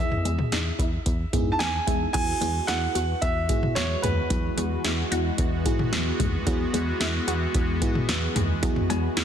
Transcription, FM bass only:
0.00 0.17 E2 loud
0.25 0.44 E2 loud
0.52 0.71 E2 loud
0.79 0.98 E2 loud
1.06 1.25 E2 loud
1.33 1.52 G#2 medium
1.60 1.79 E2 loud
1.87 2.06 E2 loud
2.14 2.33 E2 loud
2.41 2.60 E2 loud
2.68 2.87 E2 loud
2.95 3.14 E2 medium
3.22 3.51 E2 loud
3.49 3.68 G#2 medium
3.76 3.95 E2 loud
4.03 4.22 D#2 medium
4.30 4.49 E2 loud
4.57 4.76 E2 loud
4.84 5.03 E2 loud
5.12 5.31 E2 loud
5.38 5.67 E2 loud
5.66 5.85 G#2 medium
5.93 6.11 E2 loud
6.20 6.39 D#2 medium
6.47 6.66 E2 loud
6.73 6.92 E2 loud
7.00 7.19 E2 loud
7.28 7.47 E2 medium
7.55 7.83 E2 loud
7.82 8.01 G#2 medium
8.09 8.28 E2 loud
8.36 8.55 D#2 medium
8.63 8.82 E2 loud
8.90 9.09 E2 loud
9.17 9.24 E2 loud

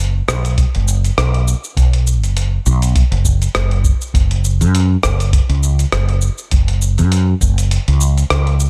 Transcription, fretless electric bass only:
0.00 0.20 F#1 loud
0.28 0.64 B1 loud
0.75 1.10 F#1 medium
1.18 1.53 B1 loud
1.77 2.23 B1 medium
2.23 2.58 F#1 loud
2.66 3.02 B1 loud
3.11 3.46 F#1 medium
3.55 3.91 F#1 medium
4.14 4.63 F#1 loud
4.61 4.95 F#2 loud
5.03 5.39 F#1 loud
5.49 5.84 C#2 medium
5.93 6.28 F#1 medium
6.52 7.00 F#1 medium
6.99 7.33 F#2 medium
7.41 7.77 F#1 loud
7.88 8.22 C#2 medium
8.30 8.66 C#2 medium

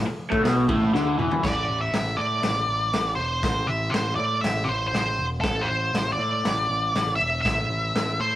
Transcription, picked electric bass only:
0.06 muted picked electric bass stroke soft
0.32 0.43 A2 loud
0.44 0.66 B1 loud
0.69 0.91 A1 medium
0.94 1.16 D2 medium
1.18 1.41 E2 loud
1.44 1.67 A1 medium
1.68 1.91 A1 medium
1.92 2.16 A1 medium
2.17 2.41 A2 medium
2.42 2.66 A1 medium
2.67 2.92 A1 medium
2.93 3.16 A1 medium
3.17 3.42 E1 medium
3.43 3.67 A1 medium
3.68 3.92 A1 medium
3.93 4.17 A1 medium
4.18 4.42 A2 medium
4.43 4.67 A1 loud
4.69 4.93 A1 medium
4.94 5.18 A1 medium
5.19 5.43 E1 medium
5.44 5.68 A1 medium
5.70 5.92 A1 medium
5.93 6.17 A1 medium
6.18 6.43 A2 medium
6.44 6.68 A1 medium
6.70 6.94 A1 medium
6.95 7.19 A1 loud
7.20 7.44 E1 medium
7.45 7.68 A1 medium
7.69 7.93 A1 medium
7.95 8.19 A1 medium
8.19 8.36 A2 medium

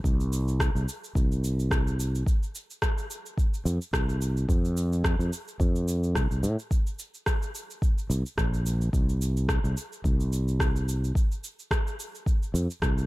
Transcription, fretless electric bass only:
0.04 0.70 C2 medium
0.75 0.85 C2 medium
1.15 2.22 C2 medium
3.65 3.78 F2 medium
3.93 4.45 C2 medium
4.49 5.15 F2 medium
5.19 5.29 F2 medium
5.60 6.15 F2 medium
6.15 6.27 C2 medium
6.31 6.45 C2 medium
6.43 6.55 A2 medium
8.10 8.22 C2 medium
8.37 8.89 A#1 medium
8.93 9.59 C2 medium
9.64 9.74 C2 medium
10.04 11.11 C2 medium
12.54 12.66 F2 medium
12.82 13.06 C2 medium

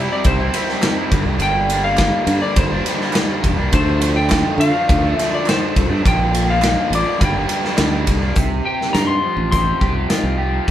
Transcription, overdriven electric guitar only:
0.00 0.39 C3 medium
0.00 0.13 G3 medium
0.00 0.11 C4 medium
0.10 0.41 G3 medium
0.10 0.39 C4 medium
0.10 0.38 E4 medium
0.39 0.53 G3 medium
0.39 0.54 C4 medium
0.39 0.55 E4 medium
0.53 0.82 C3 medium
0.53 0.71 G3 medium
0.53 0.69 C4 medium
0.53 0.68 E4 medium
0.69 0.84 G3 medium
0.69 0.85 C4 medium
0.69 0.86 E4 medium
0.83 1.10 C3 loud
0.83 1.00 G3 loud
0.83 0.99 C4 loud
0.83 0.98 E4 loud
0.99 1.12 G3 medium
0.99 1.11 C4 medium
0.99 1.10 E4 medium
1.12 1.39 G2 loud
1.12 1.39 D3 medium
1.12 1.29 G3 loud
1.12 1.27 A#3 loud
1.12 1.26 D4 medium
1.26 1.40 G3 medium
1.26 1.41 A#3 medium
1.26 1.42 D4 medium
1.40 1.97 G2 medium
1.40 1.68 D3 loud
1.40 1.69 G3 medium
1.40 1.70 A#3 medium
1.40 1.72 D4 loud
1.69 1.99 D3 medium
1.69 1.86 G3 medium
1.69 1.85 A#3 medium
1.69 1.84 D4 medium
1.85 1.99 G3 medium
1.85 2.00 A#3 medium
1.85 2.01 D4 medium
1.98 2.56 G2 loud
1.98 2.26 D3 medium
1.98 2.28 G3 loud
1.98 2.29 A#3 loud
1.98 2.31 D4 loud
2.27 2.71 D3 medium
2.27 2.44 G3 medium
2.27 2.42 A#3 medium
2.27 2.41 D4 medium
2.41 2.73 G3 medium
2.41 2.71 A#3 medium
2.41 2.71 D4 medium
2.71 2.85 G3 medium
2.71 2.86 A#3 medium
2.71 2.88 D4 medium
2.86 3.13 D3 medium
2.86 3.01 G3 medium
2.86 3.00 A#3 medium
2.86 2.99 D4 medium
2.99 3.14 G3 medium
2.99 3.15 A#3 medium
2.99 3.16 D4 medium
3.13 3.57 G2 medium
3.13 3.58 D3 loud
3.13 3.30 G3 loud
3.13 3.29 A#3 loud
3.13 3.27 D4 loud
3.28 3.58 G3 medium
3.28 3.57 A#3 medium
3.28 3.56 D4 medium
3.56 3.71 G3 medium
3.56 3.71 A#3 medium
3.56 3.73 D4 medium
3.70 3.99 D3 medium
3.70 4.00 F3 loud
3.70 4.01 A3 medium
3.70 4.03 D4 medium
4.00 4.27 D3 medium
4.00 4.17 F3 medium
4.00 4.15 A3 medium
4.00 4.15 D4 medium
4.16 4.29 F3 medium
4.16 4.30 A3 medium
4.16 4.31 D4 medium
4.29 4.57 D3 loud
4.29 4.58 F3 loud
4.29 4.59 A3 loud
4.29 4.61 D4 loud
4.58 5.02 D3 medium
4.58 4.75 F3 medium
4.58 4.73 A3 medium
4.58 4.72 D4 medium
4.73 5.04 F3 medium
4.73 5.02 A3 medium
4.73 5.00 D4 medium
5.01 5.17 F3 medium
5.01 5.17 A3 medium
5.01 5.18 D4 medium
5.17 5.43 D3 medium
5.17 5.31 F3 medium
5.17 5.30 A3 medium
5.17 5.28 D4 medium
5.30 5.45 F3 medium
5.30 5.45 A3 medium
5.30 5.47 D4 medium
5.45 5.89 D3 loud
5.45 5.62 F3 loud
5.45 5.61 A3 loud
5.45 5.59 D4 loud
5.60 5.91 F3 medium
5.60 5.89 A3 medium
5.60 5.88 D4 medium
5.89 6.03 F3 medium
5.89 6.03 A3 medium
5.89 6.02 D4 medium
6.02 6.59 A#2 medium
6.02 6.31 D3 loud
6.02 6.32 F3 medium
6.02 6.33 A#3 medium
6.02 6.33 D4 loud
6.32 6.60 D3 medium
6.32 6.49 F3 medium
6.32 6.48 A#3 medium
6.32 6.46 D4 medium
6.47 6.62 F3 medium
6.47 6.62 A#3 medium
6.47 6.63 D4 medium
6.61 7.17 A#2 medium
6.61 6.90 D3 medium
6.61 6.91 F3 loud
6.61 6.92 A#3 medium
6.61 6.93 D4 loud
6.91 7.18 D3 medium
6.91 7.06 F3 medium
6.91 7.05 A#3 medium
6.91 7.03 D4 medium
7.04 7.19 F3 medium
7.04 7.18 A#3 medium
7.04 7.17 D4 medium
7.18 7.62 G2 medium
7.18 7.45 D3 loud
7.18 7.35 G3 loud
7.18 7.33 A#3 medium
7.18 7.32 D4 loud
7.33 7.46 G3 medium
7.33 7.47 A#3 medium
7.33 7.48 D4 medium
7.46 7.76 D3 medium
7.46 7.64 G3 medium
7.46 7.63 A#3 medium
7.46 7.61 D4 medium
7.63 7.77 G3 medium
7.63 7.77 A#3 medium
7.63 7.78 D4 medium
7.76 8.20 G2 loud
7.76 8.21 D3 loud
7.76 7.93 G3 loud
7.76 7.92 A#3 loud
7.76 7.90 D4 loud
7.91 8.22 G3 medium
7.91 8.20 A#3 medium
7.91 8.19 D4 medium
8.20 8.35 G3 medium
8.20 8.34 A#3 medium
8.20 8.33 D4 medium
8.36 9.80 C3 medium
8.65 9.80 G4 medium
8.95 10.08 F4 medium
9.23 10.68 F3 medium
9.52 10.71 C4 medium
9.81 10.37 G4 medium
10.10 10.71 F4 medium
10.38 10.71 G4 medium
10.67 10.71 C3 medium

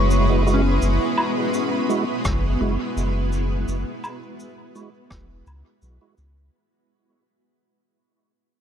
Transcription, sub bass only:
0.00 0.79 F#1 loud
0.82 0.99 F#1 loud
2.25 2.57 F#1 medium
2.61 2.77 F#1 loud
2.97 3.65 F#1 medium
3.68 3.85 F#1 loud
5.11 5.43 E1 medium
5.47 5.63 C#2 loud
5.82 5.99 B1 medium
6.18 6.50 C#2 medium

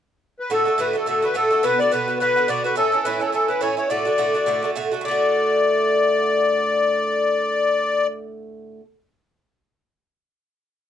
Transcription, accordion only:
0.40 0.51 B4 medium
0.52 0.80 A4 medium
0.80 0.96 B4 medium
0.96 1.07 A4 medium
1.08 1.24 A4 medium
1.24 1.36 B4 medium
1.36 1.64 A4 medium
1.63 1.80 B4 medium
1.79 1.92 D5 loud
1.91 2.19 B4 medium
2.20 2.49 B4 medium
2.48 2.63 D5 medium
2.64 2.76 B4 medium
2.77 3.06 A4 medium
3.04 3.21 B4 medium
3.20 3.31 A4 medium
3.32 3.49 A4 medium
3.48 3.61 B4 medium
3.60 3.75 C#5 medium
3.77 3.90 C#5 medium
3.89 4.71 D5 medium
5.04 8.07 D5 medium

